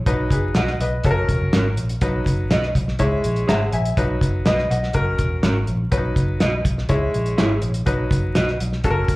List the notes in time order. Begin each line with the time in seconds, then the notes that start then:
0.06 B1 F#3 D#4 B4, kick, closed hi-hat
0.31 F#1 G#4 B4, kick, closed hi-hat
0.55 B1 F#4 B4 D#5 F#5, snare, closed hi-hat
0.67 snare
0.80 B1 B4 D#5, closed hi-hat
1.03 F#1 F#3 C#4 A4, kick, closed hi-hat
1.11 A#4
1.29 E1, kick, closed hi-hat
1.41 F#1
1.53 G#1 C#4 F#4 A#4, snare, closed hi-hat
1.77 A#1, closed hi-hat
1.89 closed hi-hat
2.01 B1 F#3 D#4 B4, kick, closed hi-hat
2.26 F#1, kick, closed hi-hat
2.50 B1 F#4 B4 D#5, snare, closed hi-hat
2.63 snare
2.75 B1, kick, closed hi-hat
2.88 snare
2.99 C#2 G#3 E4 C#5, kick, closed hi-hat
3.24 A#1, closed hi-hat
3.36 closed hi-hat
3.48 G#1 G#4 C#5 E5 F#5 A#5, snare, closed hi-hat
3.73 A#1 E5 G#5, closed hi-hat
3.85 closed hi-hat
3.97 B1 F#3 D#4 B4, kick, closed hi-hat
4.21 F#1, kick, closed hi-hat
4.45 B1 F#4 B4 D#5, snare, closed hi-hat
4.58 snare
4.70 B1 D#5 F#5, closed hi-hat
4.83 snare
4.93 F#1 F#3 C#4 A#4, kick, closed hi-hat
5.18 E1, kick, closed hi-hat
5.43 G#1 C#4 F#4 A#4, snare, closed hi-hat
5.67 A#1, closed hi-hat
5.91 B1 F#3 C#4 B4, kick, closed hi-hat
5.97 D#4
6.16 F#1, kick, closed hi-hat
6.40 B1 F#4 B4 D#5, snare, closed hi-hat
6.65 B1, kick, closed hi-hat
6.78 snare
6.89 C#2 G#3 E4 C#5, kick, closed hi-hat
7.14 A#1, closed hi-hat
7.26 closed hi-hat
7.38 G#1 E4 G#4 C#5, snare, closed hi-hat
7.62 A#1, closed hi-hat
7.74 closed hi-hat
7.86 B1 F#3 D#4 B4, kick, closed hi-hat
8.11 F#1, kick, closed hi-hat
8.35 B1 F#4 B4 D#5, snare, closed hi-hat
8.47 snare
8.60 B1, closed hi-hat
8.73 snare
8.84 F#1 F#3 C#4 A4, kick, closed hi-hat
8.91 A#4
9.08 E1, kick, closed hi-hat